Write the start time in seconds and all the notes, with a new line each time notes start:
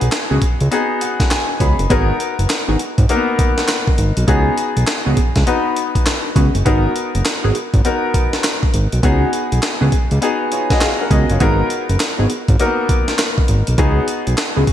Already playing: B3 D#4 F#4 G#4
0.01 B1, closed hi-hat
0.12 snare, clap, closed hi-hat
0.31 C#2 B3 C#4 F#4 G#4
0.42 kick, closed hi-hat
0.60 C#2, closed hi-hat
0.71 B3 D#4 F#4 G#4, closed hi-hat
1.01 F#5, closed hi-hat
1.20 kick, snare, closed hi-hat
1.31 G#5, snare, clap, closed hi-hat
1.60 C#2 B3 C#4 F#4 G#4 B5, kick, closed hi-hat
1.79 F#1, closed hi-hat
1.90 G#1 B3 D#4 F#4 G#4 A#4, kick, closed hi-hat
2.20 closed hi-hat
2.39 F#1, closed hi-hat
2.50 snare, clap, closed hi-hat
2.68 G#1 B3 D#4 F#4 G#4
2.79 closed hi-hat
2.98 G#1, kick, closed hi-hat
3.09 A#3 D#4 F#4 A#4, closed hi-hat
3.16 B3
3.39 kick, closed hi-hat
3.58 snare, closed hi-hat
3.68 snare, clap, closed hi-hat
3.88 kick
3.98 G#1, closed hi-hat
4.17 B1, closed hi-hat
4.27 C#2 B3 C#4 D#4 F#4 G#4, kick, closed hi-hat
4.58 closed hi-hat
4.77 B1, closed hi-hat
4.87 snare, clap, closed hi-hat
5.06 C#2 B3 C#4 F#4 G#4
5.17 kick, closed hi-hat
5.36 C#2, kick, snare, closed hi-hat
5.47 B3 D#4 F#4 B4, closed hi-hat
5.76 closed hi-hat
5.95 kick, closed hi-hat
6.06 snare, clap, closed hi-hat
6.36 C#2 B3 C#4 F#4 G#4, kick, closed hi-hat
6.55 F#1, closed hi-hat
6.65 G#1 B3 D#4 F#4 G#4 A#4, kick, closed hi-hat
6.96 closed hi-hat
7.15 F#1, closed hi-hat
7.25 snare, clap, closed hi-hat
7.44 G#1 B3 D#4 F#4 G#4
7.55 closed hi-hat
7.74 G#1, kick, closed hi-hat
7.85 B3 D#4 F#4 A#4, closed hi-hat
8.14 kick, closed hi-hat
8.33 snare, closed hi-hat
8.44 snare, clap, closed hi-hat
8.63 kick
8.74 G#1, closed hi-hat
8.92 B1, closed hi-hat
9.03 C#2 B3 C#4 D#4 F#4 G#4, kick, closed hi-hat
9.33 closed hi-hat
9.52 B1, closed hi-hat
9.63 snare, clap, closed hi-hat
9.81 C#2 B3 C#4 F#4 G#4
9.92 kick, closed hi-hat
10.11 C#2, closed hi-hat
10.21 B3 D#4 F#4 G#4, closed hi-hat
10.52 F4 C#5, closed hi-hat
10.70 F#4 D#5, kick, snare, closed hi-hat
10.81 G#4 F5, snare, clap, closed hi-hat
11.01 A#4 F#5
11.11 C#2 B3 C#4 F#4 G#4 D#5, kick, closed hi-hat
11.30 F#1 F4 C#5, closed hi-hat
11.40 G#1 B3 D#4 F#4 G#4 A#4, kick, closed hi-hat
11.70 closed hi-hat
11.89 F#1, closed hi-hat
12.00 snare, clap, closed hi-hat
12.19 G#1 B3 D#4 F#4 G#4
12.30 closed hi-hat
12.48 G#1, kick, closed hi-hat
12.59 A#3 D#4 F#4 A#4, closed hi-hat
12.66 B3
12.89 kick, closed hi-hat
13.08 snare, closed hi-hat
13.19 snare, clap, closed hi-hat
13.38 kick
13.48 G#1, closed hi-hat
13.67 B1, closed hi-hat
13.78 C#2 B3 C#4 D#4 F#4 G#4, kick, closed hi-hat
14.08 closed hi-hat
14.27 B1, closed hi-hat
14.38 snare, clap, closed hi-hat
14.56 C#2 B3 C#4 F#4 G#4
14.67 kick, closed hi-hat